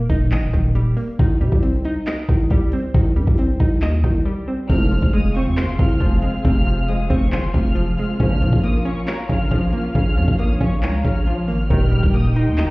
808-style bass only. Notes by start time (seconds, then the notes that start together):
0.10 D#1
0.32 A#1
0.43 D#1
0.54 D#1
1.19 C2
1.41 C3
1.52 C2
2.29 C2
2.51 C2
2.94 C2
3.16 G2
3.27 C2
3.60 C2
3.82 D#2
4.04 C2
4.70 F1
5.02 F1
5.46 F2
5.63 F1
5.79 C2
6.01 F1
6.45 F1
7.10 F1
7.32 C2
7.43 F1
7.54 F1
8.20 A#1
8.42 A#2
8.53 A#1
9.29 A#1
9.51 A#1
9.95 A#1
10.17 F2
10.28 A#1
10.61 A#1
10.83 C#2
11.05 A#1
11.48 G#1
11.70 D#1
12.03 D#1
12.47 D#2
12.63 D#1